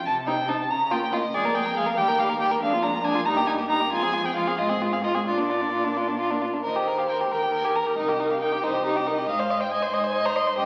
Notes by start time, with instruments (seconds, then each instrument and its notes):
0.05 cello C3, violin A5
0.27 viola C4, violin D#4 G5
0.48 viola C4, violin D#4 A5
0.69 cello C#3, violin A#5
0.91 viola A#3, violin F4 G5
1.13 viola A#3, violin F4 D#5
1.34 cello F2, viola G#3, violin G#4 D5
1.45 viola A#3, violin A#4
1.55 viola G#3, violin G#4 G5
1.65 viola A#3, violin A#4
1.76 viola G#3, violin G#4 F5
1.87 viola A#3, violin A#4
1.97 cello D#2, viola G3, violin G4 G5
2.08 viola A#3, violin A#4
2.18 viola G3, violin G4 F5
2.29 viola A#3, violin A#4
2.40 viola G3, violin G4 G5
2.51 viola A#3, violin A#4
2.61 cello F2, viola G#3, violin D4 F5
2.73 viola A#3, violin F4
2.83 viola G#3, violin D4 A#5
2.93 viola A#3, violin F4
3.03 viola G#3, violin D4 G#5
3.15 viola A#3, violin F4
3.25 cello G2, viola G3, violin D#4 A#5
3.37 viola A#3, violin G4
3.47 viola G3, violin D#4 G#5
3.58 viola A#3, violin G4
3.69 viola G3, violin D#4 A#5
3.80 viola A#3, violin G4
3.91 cello F2, viola G#3, violin F4 G#5
4.02 viola C4, violin G#4
4.13 viola G#3, violin F4
4.24 viola C4, violin G#4 G5
4.35 viola G#3, violin F4 F5
4.47 viola C4, violin G#4
4.58 cello G#2, viola G#3, violin F4 D#5
4.69 viola C4, violin G#4
4.81 viola G#3, violin F4
4.92 viola C4, violin G#4 F5
5.04 viola G#3, violin F4 D#5
5.15 viola C4, violin G#4
5.26 cello A#2, viola D4, violin F4 D5
5.37 viola A#3, violin D4
5.50 viola D4, violin F4
5.62 viola A#3, violin D4
5.72 viola D4, violin F4
5.85 viola A#3, violin D4
5.97 viola D4, violin F4
6.08 viola A#3, violin D4
6.19 viola D4, violin F4
6.31 viola A#3, violin D4
6.42 viola D4, violin F4
6.54 viola A#3, violin D4
6.64 cello D#2, violin A#4 D#5, viola C5
6.76 violin G4
6.87 violin A#4
6.98 violin G4 F5
7.09 violin A#4 G5
7.20 violin G4
7.31 cello D#2, violin A#4 G5, viola A#4
7.43 violin G4
7.54 violin A#4
7.65 violin G4 G#5
7.76 violin A#4 A#5
7.87 violin G4
7.98 cello C2, violin D#4 D#5
8.09 violin G4
8.20 violin D#4
8.30 violin G4 F5
8.41 violin D#4 G5
8.53 violin G4
8.63 cello C2, violin D#4 D#5, viola C5
8.74 violin G4
8.84 violin D#4, viola G4
8.96 violin G4
9.06 violin D#4, viola A#4
9.18 violin G4
9.28 cello G#2, viola C5, violin D#5 F5
9.40 violin C5
9.50 violin D#5
9.61 violin C5 G5
9.71 violin D#5 G#5
9.83 violin C5
9.93 cello G#2, violin D#5 G#5
10.04 violin C5
10.15 violin D#5
10.25 violin C5 A#5
10.36 violin D#5 C6
10.47 violin C5
10.57 cello G2, violin G4 D#5